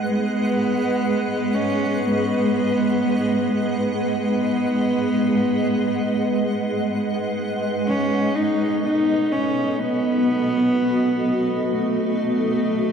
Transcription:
Already playing: G#3 G#4 B4 D#5 F#5
0.10 B3
1.54 C#4
2.05 B3
3.99 B3
7.85 F#3 B3 C#4
8.16 A4
8.35 D#4
8.84 D#4
9.16 F#4
9.32 C#4
9.79 B3
11.73 A3

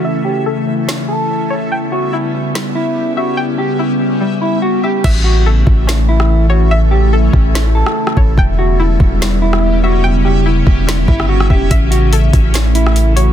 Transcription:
Already playing: C#3 E3 A3 C#4 E4 A4 C#5 E5
0.04 E5
0.25 G4
0.46 A4
0.88 C#4, snare
1.08 A4
1.50 C#5
1.71 C#3 G3 B3 G4 G5
1.92 F#4
2.13 E4
2.54 G3, snare
2.75 E4
3.17 F#4 E5
3.37 G5
3.58 G4
3.79 E4
4.21 G3
4.41 E4
4.62 F#4
4.84 G4 E5
5.04 A1 C#3 E3 A3 C#4 E4 A4 E5, kick, crash
5.24 F#4
5.46 A4
5.67 A1, kick
5.87 C#4, snare
6.09 E4
6.20 cross-stick
6.50 F#4 C#5
6.71 E5
6.91 G4
7.13 A4
7.33 A1, kick
7.55 C#4, snare
7.75 A4
7.86 cross-stick
8.07 cross-stick
8.17 A1 C#5, kick
8.38 E1 G3 B3 G4 G5, kick
8.59 F#4
8.80 E4
9.00 E1, kick
9.21 G3, snare
9.42 E4
9.53 cross-stick
9.84 F#4 E5
10.04 G5
10.25 G4
10.46 E4
10.67 E1, kick
10.87 G3, snare
11.08 G1 E4, kick
11.20 cross-stick
11.29 F#4
11.40 cross-stick
11.50 E1 G4 E5, kick
11.71 A1 E3 A3 E4 A4 E5, kick, closed hi-hat
11.91 F#4, closed hi-hat
12.13 A4, closed hi-hat
12.33 A1, kick, closed hi-hat
12.54 C#4, snare, closed hi-hat
12.75 E4, closed hi-hat
12.87 cross-stick
12.96 closed hi-hat
13.16 F#4 C#5, closed hi-hat

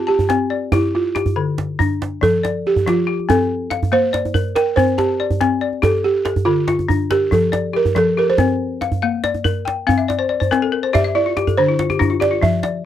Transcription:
0.07 G4 A5, djembe slap
0.19 djembe tone, djembe bass
0.29 C4, djembe slap
0.50 D5
0.72 E4 G4, djembe slap, djembe tone, djembe bass
0.83 djembe slap
0.95 F4
1.15 G4, djembe slap
1.26 djembe tone, djembe bass
1.36 D3 A4
1.58 djembe slap
1.79 D4, djembe bass
2.02 djembe slap
2.21 F3 A4, djembe tone, djembe bass
2.43 D5, djembe slap
2.66 G4, djembe slap
2.76 djembe tone, djembe bass
2.86 F3 F4, djembe slap
2.98 djembe slap
3.07 G4
3.19 djembe slap
3.29 C4 A4, djembe slap, djembe tone, djembe bass
3.70 F5, djembe slap
3.83 djembe tone, djembe bass
3.92 A#3 C5 F5
4.13 D5, djembe slap
4.25 djembe tone
4.34 A#4, djembe bass
4.56 A#4 G5, djembe slap
4.76 C4 C5, djembe tone, djembe bass
4.98 G4 A5, djembe slap
5.20 D5, djembe slap
5.31 djembe tone, djembe bass
5.41 C4, djembe slap
5.61 D5
5.73 djembe slap
5.82 G4 A4, djembe slap, djembe tone, djembe bass
6.04 G4
6.25 A4, djembe slap
6.36 djembe tone, djembe bass
6.45 D3 F4 A4
6.67 F4, djembe slap
6.79 djembe tone
6.88 D4, djembe bass
7.11 G4 A#4, djembe slap
7.31 F3 A4, djembe tone, djembe bass
7.52 D5, djembe slap
7.73 G4 A#4, djembe slap
7.85 djembe tone, djembe bass
7.95 F3 A4, djembe slap
8.17 G4 A#4
8.28 C5, djembe slap
8.38 C4, djembe slap, djembe tone, djembe bass
8.81 F5, djembe slap
8.92 djembe tone, djembe bass
9.02 A#3 F5
9.24 D5, djembe slap
9.34 djembe tone
9.44 A#4, djembe bass
9.65 G5, djembe slap
9.87 C4 F5, djembe tone, djembe bass
9.98 E5, djembe slap
10.08 D5, djembe slap
10.19 C5
10.29 D5
10.40 C5, djembe tone, djembe bass
10.51 C4 A#4, djembe slap
10.62 A4
10.72 A#4
10.83 C5
10.93 G4 D5 E5, djembe slap, djembe tone, djembe bass
11.04 E5, djembe slap
11.15 E4 D5
11.26 F4
11.37 G4, djembe slap
11.47 A4, djembe slap, djembe tone, djembe bass
11.57 D3 D4 C5, djembe slap
11.68 E4, djembe slap
11.79 F4, djembe slap
11.90 G4, djembe tone
11.99 D4 E4, djembe slap, djembe bass
12.10 F4
12.20 G4 D5, djembe slap
12.31 F4, djembe slap
12.41 F3 E5, djembe tone, djembe bass
12.63 D5, djembe slap

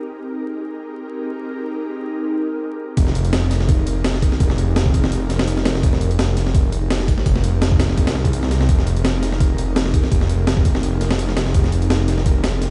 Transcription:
0.12 C4 D#4 G4 G#4 A#4
2.97 F1 C4 D#4 G4 G#4 A#4, kick, closed hi-hat
3.07 snare
3.15 closed hi-hat
3.25 closed hi-hat
3.33 snare, closed hi-hat
3.51 F1, snare, closed hi-hat
3.60 snare
3.69 kick, closed hi-hat
3.87 closed hi-hat
4.04 snare, closed hi-hat
4.14 snare
4.22 kick, closed hi-hat
4.32 snare
4.40 F1 C4 D#4 G4 G#4 A#4, kick, closed hi-hat
4.50 snare
4.58 closed hi-hat
4.76 snare, closed hi-hat
4.86 kick
4.94 F1, kick, closed hi-hat
5.04 snare
5.12 closed hi-hat
5.30 F1, snare, closed hi-hat
5.39 snare
5.48 closed hi-hat
5.57 snare
5.65 snare, closed hi-hat
5.75 snare
5.83 F1 C4 D#4 G4 G#4 A#4, kick, closed hi-hat
5.93 snare
6.01 closed hi-hat
6.11 closed hi-hat
6.19 snare, closed hi-hat
6.37 F1, snare, closed hi-hat
6.47 snare
6.55 kick, closed hi-hat
6.72 closed hi-hat
6.90 snare, closed hi-hat
7.00 snare
7.08 kick, closed hi-hat
7.18 snare
7.26 F1 C4 D#4 G4 G#4 A#4, kick, closed hi-hat
7.36 snare
7.44 closed hi-hat
7.62 snare, closed hi-hat
7.71 kick
7.80 F1, snare, closed hi-hat
7.89 snare
7.97 C2, kick, closed hi-hat
8.07 snare, closed hi-hat
8.15 snare
8.25 kick, closed hi-hat
8.33 closed hi-hat
8.43 snare
8.51 snare, closed hi-hat
8.61 snare
8.69 F1 C4 D#4 G4 G#4 A#4, kick, closed hi-hat
8.79 snare
8.87 closed hi-hat
8.97 closed hi-hat
9.05 snare, closed hi-hat
9.22 F1, snare, closed hi-hat
9.32 snare
9.40 kick, closed hi-hat
9.58 closed hi-hat
9.76 snare, closed hi-hat
9.86 snare
9.94 kick, closed hi-hat
10.04 snare
10.12 F1 C4 D#4 G4 G#4 A#4, kick, closed hi-hat
10.21 snare
10.29 closed hi-hat
10.47 snare, closed hi-hat
10.57 kick
10.65 F1, kick, closed hi-hat
10.75 snare
10.83 closed hi-hat
11.01 F1, snare, closed hi-hat
11.11 snare
11.19 closed hi-hat
11.29 snare
11.37 snare, closed hi-hat
11.46 snare
11.54 F1 C4 D#4 G4 G#4 A#4, kick, closed hi-hat
11.64 snare
11.72 closed hi-hat
11.82 closed hi-hat
11.90 snare, closed hi-hat
12.08 F1, snare, closed hi-hat
12.18 snare
12.26 kick, closed hi-hat
12.44 snare, closed hi-hat
12.62 snare, closed hi-hat

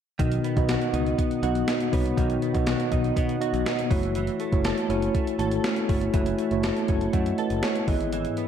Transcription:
0.19 B1 B2 D#3 B3 D#4 F#4 D#5, kick, closed hi-hat
0.32 closed hi-hat
0.44 B3, closed hi-hat
0.56 B1 B3 D#4 F#4 D#5, kick, closed hi-hat
0.69 F#4, snare, closed hi-hat
0.82 closed hi-hat
0.93 C#2 B3 D#4 F#4 D#5, closed hi-hat
1.06 closed hi-hat
1.18 B3, kick, closed hi-hat
1.31 closed hi-hat
1.43 B1 B3 D#4 F#4 D#5, closed hi-hat
1.55 closed hi-hat
1.68 D#4, snare, closed hi-hat
1.80 closed hi-hat
1.92 C2 B3 D#4 F#4 C#5, kick, open hi-hat
2.06 closed hi-hat
2.17 B1 B2 D#3 B3 D#4 F#4 D#5, kick, closed hi-hat
2.30 closed hi-hat
2.42 B3, closed hi-hat
2.54 B1 B3 D#4 F#4 D#5, kick, closed hi-hat
2.67 F#4, snare, closed hi-hat
2.80 closed hi-hat
2.91 B1 B3 D#4 F#4 D#5, kick, closed hi-hat
3.04 closed hi-hat
3.16 B2 B3, kick, closed hi-hat
3.29 closed hi-hat
3.40 B3 D#4 F#4 D#5, closed hi-hat
3.53 B1, closed hi-hat
3.66 D#4, snare, closed hi-hat
3.79 closed hi-hat
3.90 F#1 E3 A3 E4 F#4 C#5, kick, open hi-hat
4.03 closed hi-hat
4.15 E3, closed hi-hat
4.27 closed hi-hat
4.40 A3, closed hi-hat
4.52 F#1 A3 E4 F#4 C#5, kick, closed hi-hat
4.65 A4, snare, closed hi-hat
4.78 closed hi-hat
4.89 F#1 A3 C#4 E4 F#4 C#5, closed hi-hat
5.02 closed hi-hat
5.15 A3, kick, closed hi-hat
5.27 closed hi-hat
5.39 G#1 A3 E4 F#4 A4 C#5, closed hi-hat
5.51 closed hi-hat
5.64 C#4, snare, closed hi-hat
5.76 closed hi-hat
5.88 G1 A3 E4 F#4 C#5, kick, open hi-hat
6.01 closed hi-hat
6.13 F#1 E3 A3 E4 F#4 C#5, kick, closed hi-hat
6.26 closed hi-hat
6.38 A3, closed hi-hat
6.51 F#1 A3 E4 F#4 C#5, closed hi-hat
6.63 A4, snare, closed hi-hat
6.77 closed hi-hat
6.88 F#1 A3 C#4 E4 F#4 C#5, kick, closed hi-hat
7.01 closed hi-hat
7.13 F#2 A3 D#5 F#5, kick, closed hi-hat
7.26 closed hi-hat
7.38 A4 B4 D#5, closed hi-hat
7.50 F#1, closed hi-hat
7.63 C#4 A4 C#5, snare, closed hi-hat
7.75 closed hi-hat
7.87 G#1 G#2 E3 B3 E4 G#4 D#5, kick, open hi-hat
8.01 closed hi-hat
8.13 E3, closed hi-hat
8.25 closed hi-hat
8.37 B3, closed hi-hat

